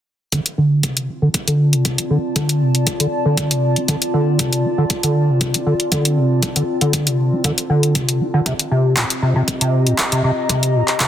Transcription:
0.32 0.40 D3 medium
0.32 11.08 C4 medium
0.32 kick loud
0.32 closed hi-hat medium
0.46 10.25 F4 medium
0.46 closed hi-hat soft
0.58 0.85 D3 medium
0.83 1.10 C3 medium
0.83 kick medium
0.83 closed hi-hat medium
0.97 closed hi-hat medium
1.09 1.20 F4 medium
1.09 8.46 A5 medium
1.20 1.29 D3 medium
1.20 8.46 D5 medium
1.34 kick loud
1.34 closed hi-hat medium
1.48 1.74 D3 medium
1.48 closed hi-hat soft
1.73 2.00 C3 medium
1.73 closed hi-hat soft
1.85 kick medium
1.85 closed hi-hat medium
1.98 2.08 F4 medium
1.98 closed hi-hat soft
2.10 2.18 D3 medium
2.36 2.63 D3 medium
2.36 kick loud
2.36 closed hi-hat medium
2.49 closed hi-hat soft
2.61 2.88 C3 medium
2.75 closed hi-hat soft
2.87 2.98 F4 medium
2.87 kick medium
2.87 closed hi-hat medium
3.00 3.07 D3 medium
3.00 closed hi-hat soft
3.25 3.52 D3 medium
3.37 kick loud
3.37 closed hi-hat medium
3.51 3.78 C3 medium
3.51 closed hi-hat soft
3.76 3.86 F4 medium
3.76 closed hi-hat soft
3.88 3.96 D3 medium
3.88 kick loud
3.88 closed hi-hat medium
4.02 closed hi-hat soft
4.14 4.41 D3 medium
4.39 4.66 C3 medium
4.39 kick loud
4.39 closed hi-hat medium
4.53 closed hi-hat soft
4.65 4.76 F4 medium
4.78 4.85 D3 medium
4.90 kick loud
4.90 closed hi-hat medium
5.03 5.30 D3 medium
5.03 closed hi-hat soft
5.29 5.56 C3 medium
5.41 kick loud
5.41 closed hi-hat medium
5.54 5.64 F4 medium
5.54 closed hi-hat soft
5.66 5.74 D3 medium
5.80 closed hi-hat soft
5.92 6.19 D3 medium
5.92 kick loud
5.92 closed hi-hat medium
6.05 closed hi-hat soft
6.17 6.44 C3 medium
6.43 6.54 F4 medium
6.43 kick loud
6.43 closed hi-hat medium
6.56 6.63 D3 medium
6.56 closed hi-hat soft
6.81 7.08 D3 medium
6.81 closed hi-hat soft
6.93 kick loud
6.93 closed hi-hat medium
7.07 7.34 C3 medium
7.07 closed hi-hat soft
7.32 7.42 F4 medium
7.44 7.52 D3 medium
7.44 kick loud
7.44 closed hi-hat medium
7.58 closed hi-hat soft
7.70 7.97 D3 medium
7.83 closed hi-hat soft
7.95 8.22 C3 medium
7.95 kick loud
7.95 closed hi-hat medium
8.09 closed hi-hat soft
8.21 8.32 F4 medium
8.34 8.41 D3 medium
8.46 8.53 C3 medium
8.46 kick loud
8.46 closed hi-hat medium
8.59 closed hi-hat soft
8.67 11.08 D#5 medium
8.71 8.98 C3 medium
8.71 11.08 G4 medium
8.97 9.04 A#2 medium
8.97 kick loud
8.97 clap loud
8.97 closed hi-hat medium
9.10 closed hi-hat soft
9.22 9.33 C3 medium
9.22 11.08 A#5 medium
9.36 9.42 C3 medium
9.48 kick loud
9.48 closed hi-hat medium
9.61 9.88 C3 medium
9.61 closed hi-hat soft
9.87 9.93 A#2 medium
9.87 closed hi-hat soft
9.98 kick medium
9.98 clap loud
9.98 closed hi-hat medium
10.12 10.22 C3 medium
10.12 closed hi-hat soft
10.24 10.31 C3 medium
10.49 10.76 C3 medium
10.49 kick loud
10.49 closed hi-hat medium
10.63 closed hi-hat soft
10.75 10.82 A#2 medium
10.88 clap soft
10.88 closed hi-hat soft
11.00 11.08 C3 medium
11.00 kick medium
11.00 clap loud
11.00 closed hi-hat medium

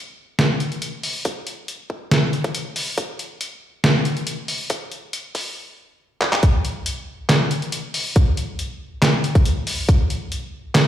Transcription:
0.39 snare loud
0.39 closed hi-hat medium
0.60 closed hi-hat soft
0.72 closed hi-hat soft
0.82 closed hi-hat medium
1.03 open hi-hat medium
1.25 kick loud
1.25 closed hi-hat medium
1.47 closed hi-hat medium
1.68 closed hi-hat medium
1.90 kick medium
2.11 snare loud
2.11 closed hi-hat medium
2.33 closed hi-hat soft
2.44 kick loud
2.44 closed hi-hat soft
2.55 closed hi-hat medium
2.76 open hi-hat medium
2.98 kick loud
2.98 closed hi-hat medium
3.19 closed hi-hat medium
3.41 closed hi-hat medium
3.84 snare loud
3.84 closed hi-hat medium
4.05 closed hi-hat soft
4.17 closed hi-hat soft
4.27 closed hi-hat medium
4.48 open hi-hat medium
4.70 kick loud
4.70 closed hi-hat medium
4.92 closed hi-hat soft
5.13 closed hi-hat medium
5.35 kick medium
5.35 open hi-hat medium
6.21 clap medium
6.33 clap loud
6.43 kick loud
6.43 closed hi-hat medium
6.65 closed hi-hat medium
6.86 closed hi-hat medium
7.29 snare loud
7.29 clap medium
7.29 closed hi-hat medium
7.51 closed hi-hat medium
7.62 closed hi-hat soft
7.72 closed hi-hat medium
7.94 open hi-hat medium
8.16 kick loud
8.16 closed hi-hat medium
8.37 closed hi-hat medium
8.59 closed hi-hat medium
9.02 snare loud
9.02 clap medium
9.02 closed hi-hat medium
9.24 closed hi-hat medium
9.35 kick loud
9.35 closed hi-hat soft
9.46 closed hi-hat medium
9.67 open hi-hat medium
9.89 kick loud
9.89 closed hi-hat medium
10.10 closed hi-hat medium
10.32 closed hi-hat medium
10.75 snare loud
10.75 clap medium
10.75 closed hi-hat medium

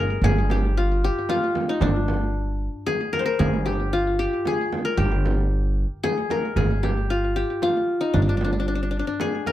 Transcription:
0.00 0.20 G1 medium
0.00 0.24 G#4 loud
0.00 1.09 A#4 medium
0.22 1.08 G1 medium
0.22 0.57 G#4 medium
0.22 frame drum medium
0.50 1.04 G4 medium
0.50 frame drum medium
0.77 1.29 F4 medium
1.04 2.30 G4 medium
1.29 2.64 F4 medium
1.29 frame drum medium
1.55 frame drum medium
1.69 1.88 D#4 medium
1.81 2.67 G1 medium
1.81 3.31 D4 medium
1.81 frame drum medium
2.08 frame drum medium
2.86 3.39 G#4 medium
2.86 frame drum medium
3.13 3.25 A#4 medium
3.13 frame drum medium
3.19 4.25 C5 medium
3.26 4.39 A#4 medium
3.39 4.25 G1 loud
3.39 3.72 G#4 medium
3.39 frame drum medium
3.66 4.19 G4 medium
3.66 frame drum medium
3.93 5.27 F4 medium
4.19 4.53 G4 medium
4.45 5.03 G#4 medium
4.45 frame drum medium
4.73 frame drum medium
4.85 5.98 A#4 medium
4.97 5.83 G1 loud
4.97 6.09 G4 medium
4.97 frame drum medium
5.26 frame drum medium
6.03 6.56 G#4 medium
6.03 frame drum medium
6.30 7.44 A#4 medium
6.30 frame drum medium
6.56 7.42 G1 medium
6.56 6.89 G#4 medium
6.56 frame drum medium
6.83 7.36 G4 medium
6.83 frame drum medium
7.10 7.62 F4 medium
7.36 8.61 G4 medium
7.62 8.97 F4 medium
7.62 frame drum medium
8.01 8.20 D#4 medium
8.14 9.00 G1 loud
8.14 8.22 D4 medium
8.14 frame drum medium
8.22 8.29 D4 soft
8.29 8.37 D4 medium
8.37 8.44 D4 soft
8.37 frame drum medium
8.44 8.52 D4 medium
8.53 8.59 D4 soft
8.60 8.68 D4 medium
8.68 8.75 D4 medium
8.75 8.82 D4 soft
8.83 8.90 D4 soft
8.91 8.99 D4 soft
8.99 9.07 D4 medium
9.07 9.52 D4 medium
9.20 9.52 G#4 medium
9.20 frame drum medium
9.46 9.52 A#4 medium
9.46 frame drum medium

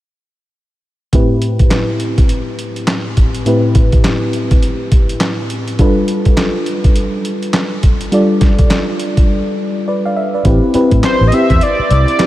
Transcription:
1.13 3.42 A2 medium
1.13 3.42 C4 medium
1.13 3.42 E4 medium
1.13 3.43 G4 medium
1.13 3.43 B4 medium
1.13 kick loud
1.13 closed hi-hat medium
1.42 closed hi-hat medium
1.59 kick medium
1.59 closed hi-hat soft
1.71 snare loud
1.71 clap medium
1.71 closed hi-hat medium
2.00 closed hi-hat medium
2.18 kick medium
2.18 closed hi-hat medium
2.29 closed hi-hat medium
2.59 closed hi-hat medium
2.76 closed hi-hat soft
2.87 snare loud
2.87 clap medium
2.87 closed hi-hat medium
3.17 kick medium
3.17 closed hi-hat medium
3.35 closed hi-hat soft
3.45 5.75 A2 medium
3.45 5.75 C4 medium
3.45 5.75 E4 medium
3.45 5.76 G4 medium
3.45 5.76 B4 medium
3.45 closed hi-hat medium
3.75 kick loud
3.75 closed hi-hat medium
3.92 kick medium
3.92 closed hi-hat soft
4.04 snare loud
4.04 clap medium
4.04 closed hi-hat medium
4.33 closed hi-hat medium
4.51 kick medium
4.51 closed hi-hat medium
4.63 closed hi-hat medium
4.92 kick medium
4.92 closed hi-hat medium
5.09 closed hi-hat medium
5.20 snare loud
5.20 clap medium
5.20 closed hi-hat medium
5.50 closed hi-hat medium
5.68 closed hi-hat soft
5.79 8.08 G3 medium
5.79 8.08 D4 medium
5.79 8.09 F4 medium
5.79 8.09 A4 medium
5.79 8.09 B4 medium
5.79 kick loud
5.79 closed hi-hat medium
6.08 closed hi-hat medium
6.25 kick medium
6.25 closed hi-hat medium
6.37 snare loud
6.37 clap medium
6.37 closed hi-hat medium
6.66 closed hi-hat medium
6.84 kick medium
6.84 closed hi-hat medium
6.96 closed hi-hat medium
7.25 closed hi-hat medium
7.43 closed hi-hat medium
7.53 snare loud
7.53 clap medium
7.53 closed hi-hat medium
7.83 kick medium
7.83 closed hi-hat medium
8.01 closed hi-hat medium
8.12 10.41 G3 medium
8.12 10.41 D4 medium
8.12 10.41 F4 medium
8.12 10.42 A4 medium
8.12 9.84 D5 medium
8.12 closed hi-hat medium
8.41 kick medium
8.41 snare medium
8.41 closed hi-hat medium
8.59 kick medium
8.59 closed hi-hat soft
8.70 snare loud
8.70 clap medium
8.70 closed hi-hat medium
9.00 closed hi-hat medium
9.17 kick medium
9.17 closed hi-hat medium
9.88 10.04 B4 medium
9.88 10.04 D5 medium
10.05 10.16 D5 medium
10.05 10.16 F5 medium
10.17 10.33 E5 medium
10.34 10.45 B4 soft
10.34 10.62 D5 medium
10.45 10.58 A1 loud
10.45 10.70 C4 medium
10.45 10.71 E4 medium
10.45 10.71 G4 medium
10.45 10.71 B4 medium
10.45 kick loud
10.45 closed hi-hat medium
10.74 11.25 C4 medium
10.74 11.25 E4 medium
10.74 11.26 G4 medium
10.74 11.26 B4 loud
10.74 muted fingered electric bass stroke soft
10.74 closed hi-hat medium
10.91 11.00 A2 medium
10.91 kick medium
10.91 closed hi-hat medium
11.03 11.29 C5 medium
11.03 snare loud
11.03 clap medium
11.03 closed hi-hat medium
11.21 11.30 A1 medium
11.27 11.35 D#5 medium
11.32 12.09 C4 medium
11.32 12.09 E4 medium
11.32 12.09 G4 medium
11.32 12.10 B4 medium
11.32 11.64 E5 loud
11.32 closed hi-hat medium
11.50 11.59 E2 medium
11.50 kick medium
11.50 closed hi-hat medium
11.61 11.91 D5 loud
11.61 closed hi-hat medium
11.79 muted fingered electric bass stroke soft
11.91 12.04 C2 medium
11.91 12.27 D5 loud
11.91 closed hi-hat medium
12.08 closed hi-hat soft
12.19 12.27 C4 medium
12.19 12.27 E4 medium
12.19 12.27 G4 medium
12.19 12.27 B4 medium
12.19 snare loud
12.19 clap medium
12.19 closed hi-hat medium

